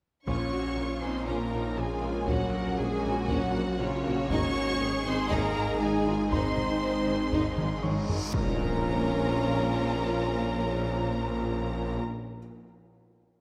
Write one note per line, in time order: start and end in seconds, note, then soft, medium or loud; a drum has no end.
0.26 0.37 A#1 soft
0.26 0.35 A#1 soft
0.26 4.31 A#1 medium
0.26 2.24 F3 soft
0.26 4.26 A#3 medium
0.26 0.98 C#4 medium
0.26 4.26 C#4 medium
0.26 0.50 C#4 soft
0.26 4.26 C#4 soft
0.26 2.24 F4 medium
0.26 2.24 F4 soft
0.26 0.50 F4 soft
0.26 4.26 A#4 medium
0.26 0.99 C#5 medium
0.26 0.98 C#6 medium
0.26 taiko soft
0.52 0.77 F#4 soft
0.76 0.87 A#1 soft
0.76 0.85 A#1 soft
0.76 0.84 A#3 soft
0.76 1.03 F4 soft
1.01 1.10 A#1 soft
1.01 1.13 A#1 soft
1.01 1.09 A#3 soft
1.01 1.28 C4 medium
1.01 1.27 D#4 soft
1.01 1.27 C5 soft
1.01 2.49 G#5 soft
1.01 1.27 C6 medium
1.26 1.36 A#1 soft
1.26 1.38 A#1 medium
1.26 1.79 A#3 medium
1.26 1.50 C#4 soft
1.26 1.53 C#4 soft
1.26 1.77 A#4 medium
1.26 1.76 A#5 medium
1.52 1.61 A#1 soft
1.52 1.63 A#1 soft
1.52 1.60 A#3 soft
1.52 1.77 D#4 soft
1.77 1.86 A#1 soft
1.77 1.88 A#1 soft
1.77 2.29 G#3 medium
1.77 1.85 A#3 soft
1.77 2.28 F4 soft
1.77 2.29 G#4 medium
1.77 2.29 G#5 medium
2.02 2.13 A#1 soft
2.02 2.11 A#1 soft
2.02 2.10 A#3 soft
2.28 2.38 A#1 medium
2.28 2.36 A#1 medium
2.28 2.78 F#3 medium
2.28 4.27 F#3 medium
2.28 2.52 C#4 soft
2.28 4.30 F#4 soft
2.28 2.79 F#4 medium
2.28 4.30 F#4 medium
2.28 2.54 F#4 soft
2.28 2.79 F#5 medium
2.28 taiko medium
2.53 2.79 A#4 medium
2.77 2.89 A#1 soft
2.77 2.87 A#1 soft
2.77 3.29 G#3 medium
2.77 2.85 A#3 soft
2.77 3.04 G#4 medium
2.77 3.30 G#4 medium
2.77 3.29 G#5 medium
3.04 3.14 A#1 soft
3.04 3.12 A#1 soft
3.04 3.12 A#3 soft
3.04 3.80 F#4 medium
3.28 3.39 A#1 medium
3.28 3.37 A#1 medium
3.28 3.80 F#3 medium
3.28 3.53 C#4 medium
3.28 3.80 F#4 medium
3.28 3.80 F#5 medium
3.28 taiko medium
3.54 3.64 A#1 soft
3.54 3.63 A#1 soft
3.54 3.62 A#3 medium
3.78 3.90 A#1 soft
3.78 3.88 A#1 soft
3.78 4.30 C#3 medium
3.78 3.88 A#3 soft
3.78 4.30 C#4 medium
3.78 4.05 F4 medium
3.78 4.30 C#5 medium
4.04 4.15 A#1 soft
4.04 4.13 A#1 medium
4.04 4.14 A#3 medium
4.04 5.52 F#4 soft
4.04 4.79 F#4 medium
4.04 5.52 F5 soft
4.29 8.33 G#1 medium
4.29 4.40 G#1 medium
4.29 4.39 G#1 medium
4.29 8.05 D#3 medium
4.29 8.34 G#3 medium
4.29 5.05 C#4 medium
4.29 8.34 D#4 medium
4.29 4.54 D#4 medium
4.29 8.05 D#4 medium
4.29 8.34 G#4 medium
4.29 8.10 G#4 medium
4.29 5.04 C#5 medium
4.29 8.34 D#5 medium
4.29 5.04 C#6 loud
4.29 taiko medium
4.80 4.91 G#1 medium
4.80 4.89 G#1 medium
4.80 4.88 C4 medium
4.80 5.81 G#4 medium
5.05 5.16 G#1 medium
5.05 5.15 G#1 medium
5.05 5.14 G#3 medium
5.05 5.30 C4 medium
5.05 5.31 C5 medium
5.05 5.32 C6 medium
5.29 5.42 G#1 medium
5.29 5.40 G#1 medium
5.29 5.81 A#3 medium
5.29 5.54 D#4 medium
5.29 6.78 G#4 soft
5.29 5.81 A#4 medium
5.29 6.79 G#5 medium
5.29 5.82 A#5 medium
5.29 taiko medium
5.55 5.64 G#1 medium
5.55 5.67 G#1 medium
5.55 5.63 G#3 medium
5.80 5.89 G#1 medium
5.80 5.92 G#1 medium
5.80 6.31 G#3 medium
5.80 5.90 C4 medium
5.80 6.07 D#4 medium
5.80 6.31 G#4 medium
5.80 6.32 G#5 medium
6.06 6.17 G#1 soft
6.06 6.15 G#1 medium
6.06 6.14 G#3 medium
6.06 6.32 F4 medium
6.31 6.42 G#1 medium
6.31 6.41 G#1 medium
6.31 7.80 C4 medium
6.31 6.55 D#4 medium
6.31 8.05 D#4 medium
6.31 7.83 C5 medium
6.31 7.80 C6 medium
6.31 7.79 C6 medium
6.31 taiko medium
6.31 reverse cymbal medium
6.57 taiko low-mid soft
6.82 6.93 G#1 soft
6.82 6.91 G#1 soft
6.82 6.90 C4 soft
7.07 7.18 G#1 soft
7.07 7.16 G#1 soft
7.07 7.15 G#3 soft
7.33 7.43 G#1 medium
7.33 7.41 G#1 medium
7.33 7.56 D#4 medium
7.33 taiko medium
7.58 7.68 G#1 soft
7.58 7.67 G#1 soft
7.58 7.66 G#3 medium
7.58 taiko mid medium
7.83 7.94 G#1 soft
7.83 7.92 G#1 medium
7.83 7.92 C4 medium
7.83 8.30 C#5 soft
7.83 8.30 C#6 soft
7.83 taiko mid medium
8.08 8.17 G#1 medium
8.08 8.19 G#1 medium
8.08 8.16 G#3 medium
8.08 taiko low medium
8.33 11.99 A#1 medium
8.33 12.00 A#1 medium
8.33 12.00 A#2 medium
8.33 11.99 F3 medium
8.33 12.00 F3 medium
8.33 11.98 A#3 medium
8.33 11.99 C#4 medium
8.33 12.00 C#4 medium
8.33 11.99 F4 medium
8.33 12.00 F4 medium
8.33 11.99 A#4 medium
8.33 11.99 C#5 medium
8.33 12.00 A#5 medium
8.33 impact medium